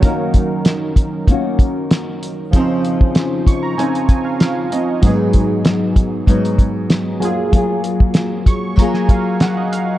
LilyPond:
<<
  \new Staff \with { instrumentName = "Synth keys" } { \time 4/4 \key ees \dorian \tempo 4 = 96 << { r1 | r4. des'''16 bes''16 aes''8 aes''16 f''16 f''8 ees''8 | r1 | r4. des'''8 bes''16 aes''16 f''8 ges''16 ees''16 f''8 | } \\ { <ges des' ees' bes'>1 | <f des' ees' c''>1 | <ges ces' ees' aes'>2.~ <ges ces' ees' aes'>8 <ges bes f' aes'>8~ | <ges bes f' aes'>2.~ <ges bes f' aes'>8 r8 | } >> }
  \new Staff \with { instrumentName = "Nylon-string guitar" } { \time 4/4 \key ees \dorian <ees bes des' ges'>2 <ees bes des' ges'>2 | <des f c' ees'>2 <des f c' ees'>4. <f c' ees'>8 | <aes, ges ces' ees'>2 <aes, ges ces' ees'>4. <bes f' aes'>8 | <ges bes f' aes'>2 <ges bes f' aes'>2 | }
  \new DrumStaff \with { instrumentName = "Drums" } \drummode { \time 4/4 <hh bd>8 <hh bd>8 <hh sn>8 <hh bd>8 <hh bd>8 <hh bd>8 <hh sn>8 hh8 | <hh bd>8 hh16 bd16 <hh sn>8 <hh bd>8 hh16 hh16 <hh bd>8 <hh sn>8 hh8 | <hh bd>8 <hh bd>8 <hh sn>8 <hh bd>8 <hh bd>16 hh16 <hh bd>8 <hh sn>8 hh8 | <hh bd>8 hh16 bd16 <hh sn>8 <hh bd>8 <hh bd>16 sn16 <hh bd>8 <hh sn>8 hh8 | }
>>